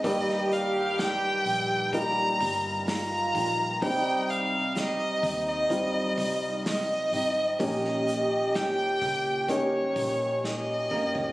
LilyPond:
<<
  \new Staff \with { instrumentName = "Violin" } { \time 4/4 \key ees \major \tempo 4 = 64 ees''8 f''8 g''4 bes''4 bes''4 | g''8 f''8 ees''8. ees''4~ ees''16 ees''4 | ees''4 g''4 des''4 ees''4 | }
  \new Staff \with { instrumentName = "French horn section" } { \time 4/4 \key ees \major g'2~ g'8 r8 f'4 | ees'4 ees'2~ ees'8 r8 | g'2.~ g'8 r8 | }
  \new Staff \with { instrumentName = "Nylon-string guitar" } { \time 4/4 \key ees \major <g, ees g bes ees' g'>2 <g bes ees' g'>4. <g bes ees' g'>8 | <c g c' ees' g'>2 <g c' ees' g'>4. <c' ees' g'>8 | <bes, ees bes des' g' bes'>2 <bes des' g' bes'>4. <bes des' g' bes'>8 | }
  \new Staff \with { instrumentName = "Upright piano" } { \time 4/4 \key ees \major <g bes ees' g'>2 <g bes ees' f'>2 | <g c' ees' g'>2 <g c' ees' f'>2 | <bes des' ees' g'>2 <bes des' ees' g'>2 | }
  \new Staff \with { instrumentName = "Upright piano" } { \clef bass \time 4/4 \key ees \major g,4. r2 r8 | c4. r2 r8 | bes,4. r2 r8 | }
  \new Staff \with { instrumentName = "Fingered electric bass" } { \clef bass \time 4/4 \key ees \major g,,4. bes,,4 g,,4 bes,,8 | c,4. ees,4 c,4 aes,,8 | bes,,4. des,4 bes,,4 g,,8 | }
  \new DrumStaff \with { instrumentName = "Drums" } \drummode { \time 4/4 <hho hhp bd>16 sn16 <hho hhp>8 <hho hhp sn>8 <hho hhp>8 <hho hhp bd>8 <hho hhp bd>8 <hho hhp sn>8 <hho hhp bd>8 | <hho hhp bd>8 <hho hhp>8 <hho hhp sn>8 <hho hhp bd>8 <hho hhp bd>8 <hho hhp bd>8 <hho hhp sn>8 <hho hhp>8 | <hho hhp bd>16 sn16 <hho hhp>8 <hho hhp sn>8 <hho hhp bd>8 <hho hhp bd>8 <hho hhp bd>8 sn8 toml16 tomfh16 | }
>>